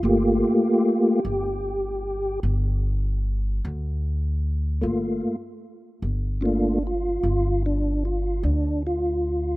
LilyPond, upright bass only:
\new Staff \with { instrumentName = "Upright bass" } { \clef bass \time 12/8 \key g \minor \tempo 4. = 50 g,,8 r4 g,,4. g,,4. d,4. | g,,8 r4 g,,4. g,,4. d,4. | }